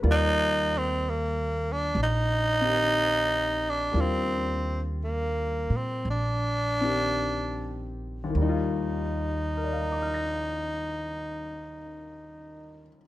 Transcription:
0.00 1.91 D#2 medium
0.00 3.90 G3 soft
0.00 3.91 A#3 soft
0.00 0.22 B4 soft
0.00 3.93 D5 soft
0.04 3.93 F4 medium
0.11 0.79 D#4 loud
0.78 1.11 C4 medium
1.09 1.74 A#3 medium
1.72 1.99 D4 medium
1.95 3.89 A#1 medium
2.03 3.71 D#4 loud
2.61 3.94 D#3 soft
2.61 3.93 C4 soft
2.61 3.95 G4 soft
3.70 4.02 D4 medium
3.92 5.66 D#2 medium
3.92 8.34 G3 soft
3.92 8.35 A#3 soft
3.92 8.36 D4 soft
3.96 8.37 F4 soft
4.01 4.81 C4 medium
5.04 5.78 A#3 medium
5.70 6.02 A#2 medium
5.76 6.07 C4 medium
6.05 8.31 A#1 medium
6.10 7.96 D4 medium
6.81 8.29 D#3 soft
6.81 8.35 C4 soft
6.81 8.37 G4 soft
8.24 12.82 D#2 medium
8.30 12.88 D#3 medium
8.35 12.89 D#2 medium
8.35 12.95 G3 soft
8.41 12.95 D#4 medium
8.41 13.00 D#4 soft
8.49 13.07 F4 medium
9.57 13.07 A#4 soft
9.64 13.07 D5 soft
9.73 13.07 F5 soft
9.82 13.07 A#5 soft
9.92 13.07 D6 soft
10.02 13.07 F6 soft
10.14 13.07 A#6 soft

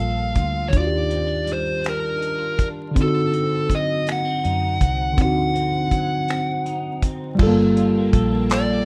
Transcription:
0.00 0.33 A#1 medium
0.00 0.67 G3 soft
0.00 1.45 G3 medium
0.00 0.73 A#3 medium
0.00 1.09 A#3 medium
0.00 0.34 F4 medium
0.00 0.69 F4 soft
0.00 0.80 A4 medium
0.00 0.71 F5 medium
0.34 0.70 D2 medium
0.34 1.48 F4 medium
0.34 kick medium
0.34 closed hi-hat medium
0.68 2.90 D#3 medium
0.68 2.94 D#3 medium
0.68 0.74 C#5 medium
0.73 2.59 D#2 medium
0.73 2.91 D4 soft
0.73 kick loud
0.73 closed hi-hat medium
0.77 2.93 F4 soft
0.77 0.83 F#4 soft
0.77 1.52 D5 medium
0.87 2.98 G4 medium
1.10 1.27 C4 medium
1.10 closed hi-hat soft
1.27 1.80 D4 soft
1.45 3.02 G3 medium
1.45 closed hi-hat medium
1.53 1.85 C5 medium
1.81 2.57 D4 medium
1.81 closed hi-hat soft
1.86 2.66 A#4 medium
1.86 finger snap medium
2.18 2.38 D#4 medium
2.22 closed hi-hat soft
2.38 3.02 F4 soft
2.57 2.97 C2 medium
2.57 3.31 D4 medium
2.57 kick medium
2.57 closed hi-hat medium
2.91 5.12 D3 medium
2.91 5.17 D3 medium
2.91 5.14 C4 medium
2.96 5.16 D#4 medium
2.96 kick loud
2.96 closed hi-hat medium
3.02 5.17 F#4 medium
3.02 3.75 A4 medium
3.32 4.06 C4 medium
3.32 closed hi-hat soft
3.69 5.90 F#3 medium
3.69 kick medium
3.69 closed hi-hat medium
3.75 4.07 D#5 medium
4.07 4.25 A#3 medium
4.07 finger snap medium
4.07 closed hi-hat medium
4.12 5.21 F#5 medium
4.25 4.79 C4 soft
4.44 4.78 F#2 medium
4.44 6.64 D#4 medium
4.44 closed hi-hat soft
4.80 5.19 C2 medium
4.80 5.52 C4 medium
4.80 kick medium
4.80 closed hi-hat medium
5.13 7.34 D3 medium
5.13 8.67 D3 medium
5.13 7.36 C4 soft
5.18 7.03 D2 medium
5.18 7.38 D#4 medium
5.18 kick loud
5.18 closed hi-hat medium
5.22 7.39 F#4 medium
5.22 7.01 F#5 medium
5.54 6.28 C4 medium
5.54 closed hi-hat soft
5.91 7.39 F#3 medium
5.91 kick medium
5.91 closed hi-hat medium
6.28 7.03 C4 medium
6.28 finger snap medium
6.28 closed hi-hat soft
6.66 7.47 D#4 medium
6.66 closed hi-hat soft
7.02 7.48 C4 medium
7.02 kick medium
7.02 closed hi-hat medium
7.35 8.85 G3 medium
7.35 8.85 F4 medium
7.39 8.10 G1 loud
7.39 8.51 G3 medium
7.39 8.12 A4 medium
7.39 8.85 A4 medium
7.39 8.85 F5 medium
7.39 8.85 G5 medium
7.39 8.85 A5 medium
7.39 kick loud
7.39 crash loud
7.47 8.85 A#3 medium
7.60 7.97 A#3 medium
7.77 8.85 F4 medium
7.77 closed hi-hat medium
7.97 8.32 A#3 medium
8.13 8.85 A#1 medium
8.13 8.51 A4 medium
8.13 kick medium
8.13 closed hi-hat medium
8.33 8.70 A#3 medium
8.50 8.85 G3 medium
8.50 8.85 A4 medium
8.50 8.85 D5 medium
8.50 clap loud
8.50 closed hi-hat medium
8.71 8.85 A#3 medium

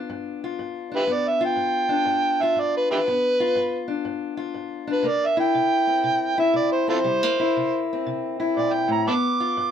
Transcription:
0.00 1.07 B3 medium
0.00 0.91 D4 medium
0.00 0.43 F4 medium
0.10 0.57 G2 medium
0.44 1.10 F4 medium
0.59 1.06 G2 medium
0.92 1.88 D4 medium
0.96 1.05 E4 medium
0.96 1.02 G4 medium
0.96 1.14 B4 loud
1.07 1.55 G2 medium
1.07 3.05 B3 medium
1.13 1.30 D5 medium
1.29 1.44 E5 medium
1.41 2.42 F4 medium
1.45 2.44 G5 loud
1.56 2.04 G2 medium
1.89 2.90 D4 medium
2.05 2.54 G2 medium
2.42 3.08 F4 medium
2.42 2.61 E5 medium
2.56 3.04 G2 medium
2.60 2.76 D5 medium
2.77 2.91 B4 medium
2.91 3.07 D4 medium
2.91 3.00 E4 medium
2.91 2.97 G4 medium
2.91 3.88 B4 loud
3.07 3.54 G2 medium
3.07 5.03 B3 medium
3.40 4.36 F4 medium
3.56 4.04 G2 medium
3.88 4.86 D4 medium
4.05 4.53 G2 medium
4.37 5.04 F4 medium
4.54 5.03 G2 medium
4.87 5.04 D4 medium
4.92 5.09 B4 medium
5.03 5.52 C3 medium
5.03 7.03 A#3 medium
5.08 5.28 D5 loud
5.27 5.39 E5 medium
5.37 6.37 E4 medium
5.37 6.37 G5 loud
5.55 6.03 C3 medium
5.87 6.86 C4 medium
6.04 6.52 C3 medium
6.38 7.39 E4 medium
6.38 6.55 E5 medium
6.54 7.02 C3 medium
6.54 6.72 D5 medium
6.72 6.89 C5 medium
6.88 7.04 C4 medium
6.88 6.98 F4 medium
6.88 6.98 A4 medium
6.88 7.87 C5 loud
7.04 7.52 C3 medium
7.04 7.23 G3 medium
7.23 9.06 A#3 soft
7.40 8.39 E4 medium
7.57 8.03 C3 medium
7.93 9.06 C4 medium
8.06 8.53 C3 medium
8.40 9.06 E4 medium
8.57 8.87 A#2 medium
8.57 8.75 D5 medium
8.74 8.89 G5 medium
8.88 9.06 A2 medium
8.88 9.07 A#5 medium
9.07 9.53 G2 medium
9.07 9.71 B3 medium
9.07 9.14 A5 medium
9.07 9.14 B5 medium
9.07 9.71 D6 loud
9.40 9.71 F4 medium
9.57 9.71 G2 medium

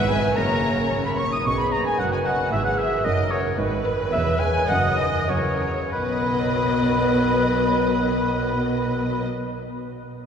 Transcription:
0.00 0.35 G#1 medium
0.00 0.35 G#2 medium
0.00 0.39 E3 medium
0.00 0.35 B4 medium
0.00 0.38 B4 soft
0.00 0.35 E5 medium
0.00 0.11 F#5 medium
0.07 0.20 G#3 medium
0.07 0.36 G#5 medium
0.07 0.38 G#5 medium
0.07 0.36 G#5 medium
0.34 1.26 F#1 soft
0.34 1.26 F#2 soft
0.34 1.19 C#3 soft
0.34 0.89 A#3 medium
0.34 1.17 A#4 soft
0.34 1.24 C#5 soft
0.34 1.19 C#5 soft
0.34 0.90 A#5 medium
0.34 0.91 A#5 medium
1.04 1.17 B3 soft
1.04 1.18 B5 soft
1.04 1.11 B5 soft
1.04 1.18 B5 soft
1.17 1.32 C#4 soft
1.17 1.31 C#6 soft
1.17 1.32 C#6 soft
1.31 1.45 D#4 soft
1.31 1.38 D#6 soft
1.31 1.48 D#6 medium
1.31 1.46 D#6 soft
1.44 1.88 B1 medium
1.44 1.88 B2 medium
1.44 2.54 D#3 soft
1.44 1.58 C#4 medium
1.44 1.96 G#4 soft
1.44 3.06 B4 soft
1.44 1.51 C#6 medium
1.44 1.59 C#6 medium
1.56 1.71 B3 soft
1.56 1.63 B5 medium
1.56 1.64 B5 soft
1.56 1.74 B5 medium
1.71 1.77 A#3 medium
1.71 1.93 D#5 soft
1.71 1.84 A#5 soft
1.71 1.85 A#5 medium
1.71 1.86 A#5 soft
1.83 1.98 G#3 soft
1.83 1.90 G#5 soft
1.83 2.01 G#5 medium
1.83 1.99 G#5 soft
1.97 2.41 F#1 medium
1.97 2.41 F#2 soft
1.97 2.11 F#3 medium
1.97 2.52 F#4 soft
1.97 2.03 F#5 soft
1.97 2.14 F#5 medium
1.97 2.05 F#5 medium
2.10 2.24 G#3 soft
2.10 2.17 G#5 soft
2.10 2.28 G#5 medium
2.10 2.18 G#5 soft
2.23 2.51 F#3 medium
2.23 2.45 D#5 soft
2.23 2.50 F#5 soft
2.23 2.52 F#5 medium
2.48 2.94 G#1 medium
2.48 2.94 G#2 medium
2.48 2.55 E3 medium
2.48 2.56 E5 medium
2.48 2.65 E5 medium
2.48 2.64 E5 medium
2.52 3.08 E3 soft
2.52 3.05 G#4 medium
2.62 2.68 F#3 medium
2.62 2.70 F#5 soft
2.62 2.80 F#5 medium
2.66 2.79 F#5 soft
2.74 3.02 E3 soft
2.74 3.02 E5 soft
2.74 3.06 E5 medium
2.79 2.98 B4 soft
2.79 3.04 E5 soft
3.02 3.46 F#1 medium
3.02 3.47 F#2 soft
3.02 3.29 D#3 medium
3.02 3.57 A#4 soft
3.02 3.29 D#5 medium
3.02 3.32 D#5 medium
3.02 3.31 D#5 soft
3.06 3.58 F#3 soft
3.06 3.57 A#4 soft
3.29 3.56 C#3 soft
3.29 3.51 A#4 medium
3.29 3.36 C#5 soft
3.29 3.58 C#5 medium
3.29 3.40 C#5 soft
3.57 4.01 G#1 medium
3.57 4.01 G#2 medium
3.57 4.12 D#3 soft
3.57 4.69 B4 medium
3.57 5.30 B4 soft
3.85 4.05 B4 medium
4.11 4.57 E1 medium
4.11 4.57 E2 medium
4.11 4.70 C#3 soft
4.11 4.38 E3 medium
4.11 4.18 E5 medium
4.11 4.41 E5 medium
4.11 4.39 E5 medium
4.38 4.68 G#3 medium
4.38 4.62 B4 medium
4.38 4.70 G#5 medium
4.38 4.69 G#5 medium
4.38 4.47 G#5 medium
4.68 5.16 F#1 medium
4.68 5.16 F#2 medium
4.68 5.31 D#3 soft
4.68 4.98 F#3 medium
4.68 5.28 D#5 medium
4.68 4.97 F#5 medium
4.68 4.99 F#5 medium
4.68 4.76 F#5 medium
4.98 5.13 D#3 medium
4.98 5.22 B4 soft
4.98 5.31 D#5 medium
4.98 5.28 D#5 soft
4.98 5.32 D#5 medium
5.28 5.80 F#1 medium
5.28 5.80 F#2 soft
5.28 5.92 C#3 soft
5.28 5.61 E3 soft
5.28 5.61 A#4 soft
5.28 5.93 C#5 soft
5.28 5.92 C#5 medium
5.28 5.92 C#5 soft
5.62 5.86 A#4 soft
5.92 9.24 B1 soft
5.92 9.23 B2 soft
5.92 9.24 D#3 soft
5.92 9.24 F#3 soft
5.92 9.24 B3 soft
5.92 9.23 B4 medium
5.92 9.24 B4 medium
5.92 9.24 B4 soft
5.92 9.24 D#5 soft
5.92 9.23 B5 soft

